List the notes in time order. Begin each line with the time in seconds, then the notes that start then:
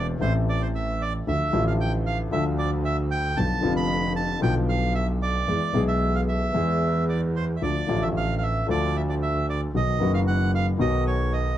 Already playing: E1 E2 E3 A3 C4 A4
0.19 A1 A2 E3 A3 C4 A4 C5
0.49 D5
0.62 C5
0.75 E5
1.01 D5
1.27 D2 D3 F3 A3 F4 E5
1.51 A1 A2 D3 F3 A3
1.55 F4
1.67 F5
1.81 G5
2.06 F5
2.31 D2 D3 F3 A3 F4 E5
2.59 D5
2.85 E5
3.11 G5
3.37 B1 B2 D3 F3 B3 F4 A5
3.61 F1 F2 D3 F3 B3 F4
3.76 B5
4.16 A5
4.40 B1 B2 D3 F3 B3 F4 G5
4.69 F5
4.95 E5
5.22 D5
5.48 E2 E3 G#3 B3 G#4
5.73 B1 B2 E3 G#3 B3 G#4
5.88 E5
6.15 F5
6.28 E5
6.54 E2 E3 G#3 B3 G#4
7.09 D5
7.36 C5
7.56 E5
7.62 D2 D3 F3 A3 F4 D5
7.87 A1 A2 D3 F3 A3
7.91 F4
8.02 E5
8.17 F5
8.38 F5
8.43 E5
8.67 D2 D3 F3 A3 D5
8.71 F4
8.96 E5
9.09 D5
9.22 E5
9.49 D5
9.74 B1 B2 D#3 F#3 B3 F#4 D#5
9.99 F#1 F#2 D#3 F#3 B3
10.03 F#4
10.14 F5
10.27 F#5
10.55 F5
10.78 B1 B2 D#3 F#3 B3 F#4 D#5
11.07 C#5
11.33 D#5